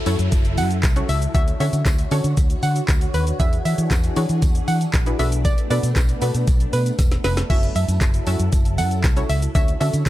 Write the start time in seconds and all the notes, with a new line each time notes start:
Already playing: F#3 E4 A4, downlifter
0.06 F#2 C#4 E4 F#4 A4 C#5, open hi-hat, tambourine, shaker
0.19 F#2, closed hi-hat, shaker
0.32 F#1, kick, closed hi-hat, tambourine, shaker
0.45 closed hi-hat, shaker
0.58 F#2 F#5, open hi-hat, tambourine, shaker
0.71 closed hi-hat, shaker
0.83 C2, kick, snare, clap, closed hi-hat, tambourine, shaker
0.96 C#4 E4 F#4 A4 C#5, closed hi-hat, shaker
1.09 C#2 E5, open hi-hat, tambourine, shaker
1.22 closed hi-hat, shaker
1.34 D2 D3 C#4 D4 F#4 A4 C#5 E5, kick, closed hi-hat, tambourine, shaker
1.48 closed hi-hat, shaker
1.60 D3 C#4 D4 F#4 A4 C#5 E5, open hi-hat, tambourine, shaker
1.73 D3, closed hi-hat, tambourine, shaker
1.86 D2, kick, snare, clap, closed hi-hat, tambourine, shaker
1.99 closed hi-hat, shaker
2.11 D3 C#4 D4 F#4 A4 C#5, open hi-hat, tambourine, shaker
2.24 D3, closed hi-hat, tambourine, shaker
2.37 D2, kick, closed hi-hat, tambourine, shaker
2.50 closed hi-hat, shaker
2.63 D3 F#5, open hi-hat, tambourine, shaker
2.76 closed hi-hat, tambourine, shaker
2.88 D2, kick, snare, clap, closed hi-hat, tambourine, shaker
3.01 closed hi-hat, shaker
3.14 D#2 B4, open hi-hat, tambourine, shaker
3.27 closed hi-hat, shaker
3.39 E2 E3 D4 E4 F#4 G#4 B4 E5, kick, closed hi-hat, tambourine, shaker
3.53 closed hi-hat, shaker
3.65 E3 E5, open hi-hat, tambourine, shaker
3.78 E3, closed hi-hat, shaker
3.91 E2, kick, snare, clap, closed hi-hat, tambourine, shaker
4.04 closed hi-hat, shaker
4.16 E3 D4 E4 F#4 G#4 C#5, open hi-hat, tambourine, shaker
4.29 E3, closed hi-hat, tambourine, shaker
4.42 E2, kick, closed hi-hat, tambourine, shaker
4.55 closed hi-hat, shaker
4.68 E3 F#5, open hi-hat, tambourine, shaker
4.81 closed hi-hat, tambourine, shaker
4.94 A#1, kick, snare, clap, closed hi-hat, tambourine, shaker
5.06 D4 E4 F#4 G#4 B4, closed hi-hat, shaker
5.19 B1 A3 B3 D4 F#4 A4 B4 E5, open hi-hat, tambourine, shaker
5.32 closed hi-hat, shaker
5.45 D5, kick, closed hi-hat, tambourine, shaker
5.58 closed hi-hat, shaker
5.70 B2 B3 D4 F#4 A4 B4 D5, open hi-hat, tambourine, shaker
5.83 B2, closed hi-hat, tambourine, shaker
5.96 B1, kick, snare, clap, closed hi-hat, tambourine, shaker
6.09 closed hi-hat, shaker
6.21 B2 B3 D4 F#4 A4 B4, open hi-hat, tambourine, shaker
6.34 B2, closed hi-hat, tambourine, shaker
6.47 B1, kick, closed hi-hat, tambourine, shaker
6.60 closed hi-hat, shaker
6.73 B2 B4, open hi-hat, tambourine, shaker
6.86 closed hi-hat, tambourine, shaker
6.99 E1, kick, snare, closed hi-hat, tambourine, shaker
7.11 snare, closed hi-hat, tambourine, shaker
7.24 F1 B4, snare, open hi-hat, tambourine, shaker
7.37 snare, closed hi-hat, shaker
7.50 F#1 F#3 C#4 E4 F#4 A4 C#5 E5, kick, crash, tambourine
7.63 closed hi-hat, shaker
7.75 F#2 E5, open hi-hat, tambourine, shaker
7.88 F#2, closed hi-hat, tambourine, shaker
8.01 F#1, kick, snare, clap, closed hi-hat, tambourine, shaker
8.14 closed hi-hat, shaker
8.27 F#2 C#4 E4 F#4 A4 E5, open hi-hat, tambourine, shaker
8.39 F#2, closed hi-hat, shaker
8.52 F#1, kick, closed hi-hat, tambourine, shaker
8.65 closed hi-hat, shaker
8.78 F#2 F#5, open hi-hat, tambourine, shaker
8.91 closed hi-hat, tambourine, shaker
9.04 C2, kick, snare, clap, closed hi-hat, tambourine, shaker
9.16 C#4 E4 F#4 A4 C#5, closed hi-hat, tambourine, shaker
9.29 C#2 E5, open hi-hat, tambourine, shaker
9.42 closed hi-hat, shaker
9.55 D2 D3 C#4 D4 F#4 A4 C#5 E5, kick, closed hi-hat, tambourine, shaker
9.68 closed hi-hat, shaker
9.80 D3 C#4 D4 F#4 A4 E5, open hi-hat, tambourine, shaker
9.93 D3, closed hi-hat, tambourine, shaker